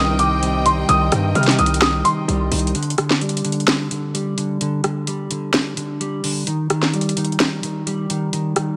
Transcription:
0.00 0.17 C2 loud
0.00 0.85 C2 loud
0.00 0.17 G2 medium
0.00 2.71 C3 medium
0.00 0.17 D#3 loud
0.00 0.18 D#3 medium
0.00 0.41 G3 medium
0.00 2.71 C4 medium
0.00 2.71 D#5 medium
0.00 2.71 G5 medium
0.00 0.16 D#6 medium
0.19 0.64 D#3 medium
0.19 0.63 D6 medium
0.19 closed hi-hat medium
0.42 1.34 G3 medium
0.42 closed hi-hat medium
0.66 0.88 D#3 medium
0.66 0.86 C6 medium
0.66 closed hi-hat medium
0.89 1.11 C2 loud
0.89 1.11 D#3 loud
0.89 1.32 D#6 loud
0.89 closed hi-hat medium
1.12 1.34 G2 loud
1.12 1.57 D#3 medium
1.12 cross-stick medium
1.12 closed hi-hat medium
1.35 1.58 C3 loud
1.35 2.27 G3 medium
1.35 1.56 F6 medium
1.35 closed hi-hat soft
1.43 closed hi-hat medium
1.48 snare medium
1.48 closed hi-hat medium
1.59 2.03 C2 loud
1.59 1.81 D#3 medium
1.59 1.79 D#6 medium
1.59 closed hi-hat medium
1.66 closed hi-hat medium
1.74 closed hi-hat medium
1.82 2.04 D#3 medium
1.82 2.03 D#6 medium
1.82 cross-stick loud
1.82 snare loud
1.82 closed hi-hat medium
2.05 2.50 D#3 medium
2.05 2.71 C6 medium
2.05 closed hi-hat medium
2.28 2.51 C2 loud
2.28 2.75 G3 medium
2.28 closed hi-hat medium
2.52 2.74 C2 loud
2.52 2.74 D#3 medium
2.52 closed hi-hat soft
2.52 open hi-hat medium
2.59 closed hi-hat medium
2.67 closed hi-hat medium
2.75 2.97 D3 medium
2.75 closed hi-hat medium
2.83 closed hi-hat medium
2.90 closed hi-hat medium
2.98 3.43 D3 medium
2.98 cross-stick medium
2.98 closed hi-hat medium
3.11 snare medium
3.21 4.13 G3 medium
3.21 closed hi-hat soft
3.29 closed hi-hat medium
3.37 closed hi-hat medium
3.44 3.66 D3 medium
3.44 closed hi-hat medium
3.52 closed hi-hat medium
3.60 closed hi-hat soft
3.68 3.90 D3 medium
3.68 snare loud
3.68 closed hi-hat medium
3.91 4.36 D3 medium
3.91 closed hi-hat medium
4.14 5.06 G3 medium
4.14 closed hi-hat medium
4.38 4.60 D3 medium
4.38 closed hi-hat medium
4.61 4.83 D3 loud
4.61 closed hi-hat medium
4.84 5.30 D3 medium
4.84 cross-stick medium
4.84 closed hi-hat medium
5.07 5.99 G3 medium
5.07 closed hi-hat medium
5.31 5.53 D3 medium
5.31 closed hi-hat medium
5.54 5.75 D3 medium
5.54 snare loud
5.54 closed hi-hat medium
5.77 6.23 D3 medium
5.77 closed hi-hat medium
6.00 6.47 G3 medium
6.00 closed hi-hat medium
6.24 6.47 D3 medium
6.24 open hi-hat medium
6.47 6.69 D#3 loud
6.47 closed hi-hat medium
6.70 7.16 D#3 medium
6.70 cross-stick medium
6.70 closed hi-hat medium
6.83 snare medium
6.93 7.85 G3 medium
6.93 closed hi-hat soft
7.01 closed hi-hat medium
7.09 closed hi-hat medium
7.17 7.39 D#3 medium
7.17 closed hi-hat medium
7.25 closed hi-hat medium
7.32 closed hi-hat soft
7.40 7.62 D#3 medium
7.40 snare loud
7.40 closed hi-hat medium
7.63 8.09 D#3 medium
7.63 closed hi-hat medium
7.87 8.77 G3 medium
7.87 closed hi-hat medium
8.10 8.32 D#3 medium
8.10 closed hi-hat medium
8.33 8.55 D#3 medium
8.33 closed hi-hat medium
8.56 8.77 D#3 medium
8.56 cross-stick medium
8.56 closed hi-hat medium

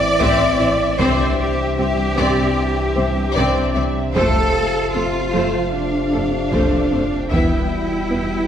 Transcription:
0.00 1.01 A1 medium
0.00 0.96 A2 medium
0.00 0.99 E3 medium
0.00 3.98 C4 medium
0.00 0.96 E4 medium
0.00 0.99 D5 loud
0.00 4.12 E5 medium
0.20 0.29 A1 medium
0.20 0.44 A3 medium
0.20 0.57 C4 medium
0.20 0.58 E5 medium
0.20 taiko medium
0.59 0.68 A1 medium
0.59 0.67 C4 medium
0.59 0.83 E4 medium
0.59 0.68 E5 medium
0.99 4.18 C2 medium
0.99 1.08 C2 medium
0.99 1.23 C3 medium
0.99 7.31 C3 medium
0.99 3.98 E3 medium
0.99 1.36 C4 medium
0.99 3.98 D4 medium
0.99 1.39 C5 medium
0.99 1.36 D5 medium
0.99 taiko loud
1.39 1.77 G4 medium
1.78 1.87 C2 medium
1.78 2.02 G3 medium
1.78 1.86 C4 medium
1.78 3.33 G4 medium
1.78 1.86 C5 soft
2.17 2.26 C2 medium
2.17 2.42 C3 medium
2.17 2.54 C4 medium
2.17 2.54 D5 medium
2.96 3.05 C2 soft
2.96 3.21 G3 medium
2.96 3.04 C4 soft
2.96 3.04 C5 medium
3.35 3.44 C2 medium
3.35 3.60 C3 medium
3.35 3.73 C4 medium
3.35 3.72 D5 medium
3.35 taiko medium
3.75 3.83 C2 medium
3.75 4.00 G3 medium
3.75 3.83 C4 soft
3.75 3.83 D5 medium
4.14 7.34 F1 medium
4.14 4.23 F2 medium
4.14 7.27 F3 medium
4.14 4.39 F3 medium
4.14 7.27 A3 medium
4.14 4.52 A3 medium
4.14 7.27 F4 medium
4.14 4.91 A4 medium
4.14 4.51 C5 medium
4.14 7.27 F5 medium
4.14 taiko medium
4.94 5.02 F2 soft
4.94 5.03 A3 soft
4.94 5.18 C4 medium
4.94 5.73 F4 medium
4.94 5.02 A4 soft
5.33 5.42 F2 medium
5.33 5.57 F3 medium
5.33 5.71 A3 soft
5.33 5.70 C5 medium
5.73 7.28 D4 medium
6.13 6.21 F2 soft
6.13 6.21 A3 soft
6.13 6.36 C4 medium
6.13 6.21 A4 soft
6.52 6.60 F2 medium
6.52 6.76 F3 medium
6.52 6.89 A3 medium
6.52 6.89 C5 medium
6.52 taiko medium
6.91 7.00 F2 soft
6.91 6.99 A3 soft
6.91 7.15 C4 medium
6.91 7.01 C5 soft
7.31 8.47 E1 medium
7.31 7.39 E2 medium
7.31 8.47 B2 soft
7.31 7.55 E3 medium
7.31 8.47 G3 soft
7.31 7.68 B3 medium
7.31 8.47 B3 soft
7.31 8.47 E4 medium
7.31 8.47 E4 soft
7.31 7.68 E5 soft
7.31 8.47 G5 soft
7.31 taiko medium
8.10 8.19 E2 soft
8.10 8.34 B3 soft
8.10 8.18 B3 soft
8.10 8.18 B4 soft

